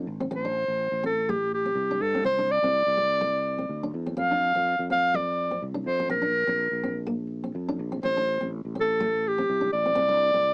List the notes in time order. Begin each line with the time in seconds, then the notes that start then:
Already playing: D4
0.07 G#1
0.20 C4
0.31 A1 C4
0.36 C5
0.45 D4
0.68 A1
0.92 A1
1.04 C4 A4
1.29 A3 G4
1.54 G4
1.65 C4
1.75 C2
1.91 D4
2.00 G2 A4
2.15 C4
2.24 C2 C4 C5
2.39 D4
2.51 D5
2.63 C2 C4
2.87 C2
2.97 C4
3.21 muted steel-string acoustic guitar stroke
3.58 C4
3.69 D2
3.83 D4
3.94 E2
4.06 C4
4.17 F2 C4 F5
4.31 D4
4.55 F2 C4
4.79 F2
4.90 C4 F5
5.14 D5, muted steel-string acoustic guitar stroke
5.51 C4
5.62 C2
5.74 D4
5.86 F2 C5
6.00 C4
6.09 A#1 C4 A#4
6.22 D4
6.47 A#1 C4
6.72 A#1
6.84 C4
7.07 A#3
7.44 C4
7.55 F2
7.68 D4
7.79 A#1
7.92 C4
8.03 A1 C4 C5
8.17 D4
8.41 A1 C4
8.65 A1
8.75 C4
8.80 A4
9.00 A3
9.28 G4
9.38 C4
9.50 C2
9.61 D4
9.73 A1 D5
9.86 C4
9.95 C2 C4
10.09 D4
10.34 C2 C4